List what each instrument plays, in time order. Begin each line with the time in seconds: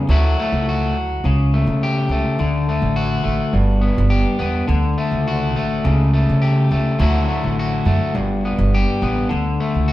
0.09 upright bass D2, clean electric guitar F#3 A3 E4 F#4
0.40 clean electric guitar A3
0.52 upright bass C#2
0.69 clean electric guitar F#4
0.94 upright bass D2
1.24 upright bass C#2, clean electric guitar C#3
1.54 clean electric guitar A3
1.67 upright bass C#3
1.83 clean electric guitar G4
2.09 upright bass C#2, clean electric guitar A3
2.39 upright bass D2, clean electric guitar D3
2.69 clean electric guitar A3
2.82 upright bass A1
2.96 clean electric guitar F#4
3.24 upright bass A1, clean electric guitar A3
3.53 upright bass G1, clean electric guitar G2
3.81 clean electric guitar B3
3.98 upright bass G1
4.10 clean electric guitar G4
4.39 upright bass E2, clean electric guitar B3
4.68 upright bass D2, clean electric guitar D3
4.98 clean electric guitar A3
5.12 upright bass C#2
5.28 clean electric guitar F#4
5.55 upright bass A1, clean electric guitar A3
5.84 upright bass C#2, clean electric guitar C#3
6.14 clean electric guitar A3
6.29 upright bass C#3
6.42 clean electric guitar G4
6.71 upright bass C#2, clean electric guitar A3
6.99 upright bass D2, clean electric guitar D3 F#3 A3 E4 F#4
7.28 clean electric guitar A3
7.44 upright bass A1
7.59 clean electric guitar F#4
7.85 upright bass F#2, clean electric guitar A3
8.15 upright bass G1, clean electric guitar G2
8.45 clean electric guitar B3
8.58 upright bass G1
8.74 clean electric guitar G4
9.02 upright bass A1, clean electric guitar B3
9.29 upright bass D2, clean electric guitar D3
9.60 clean electric guitar A3
9.75 upright bass C#2
9.88 clean electric guitar F#4